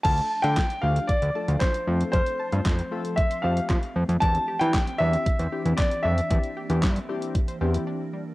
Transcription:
<<
  \new Staff \with { instrumentName = "Grand piano" } { \time 4/4 \key c \mixolydian \tempo 4 = 115 a''8. g''8. f''8 d''4 c''4 | c''2 e''8 f''4 r8 | a''8. g''8. e''4. d''8 e''8~ | e''2. r4 | }
  \new Staff \with { instrumentName = "Synth arpeggio sound" } { \time 4/4 \key c \mixolydian f'''16 r16 a''16 f''16 f'16 d'16 a16 r8 d'''16 a''16 f''16 f'16 r16 a16 r16 | f'''16 r16 a''16 f''16 f'16 c'16 a16 r8 c'''16 a''16 f''16 f'16 r16 a16 r16 | d''16 r16 g'16 e'16 d'16 c'16 g16 r8 c''16 g'16 e'16 d'16 r16 g16 r16 | d''16 r16 g'16 e'16 d'16 c'16 g16 r8 c''16 g'16 e'16 d'16 r16 g16 r16 | }
  \new Staff \with { instrumentName = "Synth keys" } { \time 4/4 \key c \mixolydian <a d' f' a'>8 r16 <a d' f' a'>8 r16 <a d' f' g'>8 r8 <a d' f' a'>8. r16 <a c' f' a'>8~ | <a c' f' a'>8 r16 <a c' f' a'>8 r16 <a c' f' a'>8 r8 <a c' f' g'>8. r8. | <c' d' e' g'>8 r16 <c' d' e' g'>8 r16 <c' d' e' g'>8 r8 <c' d' e' g'>8. r8. | <c' d' e' g'>8 r16 <c' d' e' g'>8 r16 <c' d' e' g'>8 r8 <c' d' e' g'>8. r8. | }
  \new Staff \with { instrumentName = "Ambient pad" } { \time 4/4 \key c \mixolydian << { d'2.~ d'8 c'8~ | c'1 | d'1 | bes1 | } \\ { <f a>1~ | <f a>1 | e1~ | e1 | } >> }
  \new Staff \with { instrumentName = "Analog synth bass" } { \clef bass \time 4/4 \key c \mixolydian d,8 r16 d8 r16 d,8 r16 d,16 r16 d,16 r8 f,8 | f,16 r8 g,16 f,8 r4 f,8 f16 r16 f,16 f,16 | e,8 r16 e8 r16 e,8 r16 e,16 r16 e,16 r8 f,8 | e,16 r8 e,16 g,8 r4 e,8 r4 | }
  \new DrumStaff \with { instrumentName = "Drums" } \drummode { \time 4/4 <cymc hh bd>16 hh8 hh16 <hc hh bd sn>16 hh8 hh16 <hh bd>16 hh8 hh16 <hc hh bd sn>16 hh8 hh16 | <hh bd>16 hh8 hh16 <hc hh bd sn>16 hh8 hh16 <hh bd>16 hh8 hh16 <hc hh bd sn>16 hh8 hh16 | <hh bd>16 hh8 hh16 <hc hh bd sn>16 hh8 hh16 <hh bd>16 hh8 hh16 <hc hh bd sn>16 hh8 hh16 | <hh bd>16 hh8 hh16 <hc hh bd sn>16 hh8 hh16 <hh bd>16 hh8 hh16 r4 | }
>>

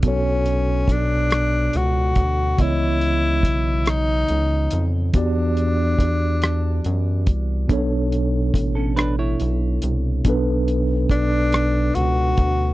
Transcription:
<<
  \new Staff \with { instrumentName = "Clean electric guitar" } { \time 6/8 \key b \minor \tempo 4. = 47 r2. | r2. | r2. | r4 r16 <cis' a'>16 <d' b'>16 <e' cis''>4~ <e' cis''>16~ |
<e' cis''>16 r2 r8. | }
  \new Staff \with { instrumentName = "Tenor saxophone" } { \time 6/8 \key b \minor cis'4 d'4 fis'4 | e'4. dis'4 r8 | d'2~ d'8 r8 | r2. |
r4 d'4 fis'4 | }
  \new Staff \with { instrumentName = "Tine electric piano" } { \time 6/8 \key b \minor <b, b fis' a' cis''>2. | <cis e b cis'' dis''>2. | <e b fis' g' d''>2. | <b, b d' a' cis''>2. |
<b, b d' a' b'>2. | }
  \new Staff \with { instrumentName = "Analog synth bass" } { \clef bass \time 6/8 \key b \minor b,,4 b,,4 cis,8 d,8 | cis,4 b,,4 cis,8 eis,8 | e,4 e,4 fis,8 c,8 | b,,4 a,,4 b,,8 c,8 |
b,,4 b,,4 cis,8 d,8 | }
  \new DrumStaff \with { instrumentName = "Drums" } \drummode { \time 6/8 <hh bd>8 hh8 <hh bd>8 <hh ss>8 hh8 <hh bd>8 | <hh bd>8 hh8 <hh bd>8 <hh ss>8 hh8 hh8 | <hh bd>8 hh8 <hh bd>8 <hh ss>8 hh8 <hh bd>8 | <hh bd>8 hh8 <hh bd>8 <hh ss>8 hh8 hh8 |
<hh bd>8 hh8 <hh bd>8 <hh ss>8 hh8 <hh bd>8 | }
>>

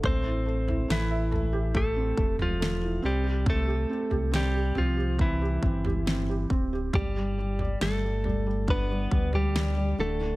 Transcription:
<<
  \new Staff \with { instrumentName = "Clean electric guitar" } { \time 4/4 \key c \major \tempo 4 = 69 <c' c''>4 <e e'>4 <a a'>8. <f f'>8. <g g'>8 | <a a'>4 <g g'>8 <f f'>8 <e e'>4. r8 | <g g'>4 <a a'>4 <b b'>8. <g g'>8. <a a'>8 | }
  \new Staff \with { instrumentName = "Felt piano" } { \time 4/4 \key c \major a16 e'16 a16 e'16 a16 e''16 a16 g'16 a16 c'16 a8 a16 e'16 c'16 g'16 | c'16 g'16 c'16 g'16 c'16 g'16 c'16 g'16 c'16 g'16 c'16 g'16 c'16 g'16 c'16 g'16 | g16 g16 g16 g16 g16 g16 g16 g16 d'16 g16 g16 g16 g16 g16 d16 d16 | }
  \new Staff \with { instrumentName = "Sub bass" } { \clef bass \time 4/4 \key c \major a,,4 a,,4. e,,4 c,8~ | c,8 r16 c,8. c,4 g,,4 d,,8 | g,,4 g,,4. d,4 d,,8 | }
  \new DrumStaff \with { instrumentName = "Drums" } \drummode { \time 4/4 <bd tomfh>8. tomfh16 sn8 tomfh8 <bd tomfh>8 bd16 tomfh16 sn4 | <bd tomfh>8. tomfh16 sn8 tomfh8 <bd tomfh>8 bd16 tomfh16 sn8 bd8 | <bd tomfh>8. tomfh16 sn8 tomfh8 <bd tomfh>8 bd16 tomfh16 sn4 | }
>>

